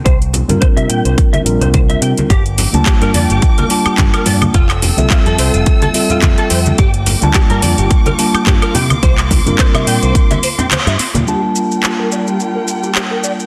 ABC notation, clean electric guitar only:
X:1
M:4/4
L:1/16
Q:"Swing 16ths" 1/4=107
K:Gdor
V:1 name="Clean electric guitar"
c z3 c e g c z e z c c e g z | G z3 G B d G z B z G G B d z | F z3 F A c F z A z F F A c z | G z3 G B d G z B z G G B g z |
c z3 c e g c z e c C c e C z | G z3 G B d G z B z G G B d z |]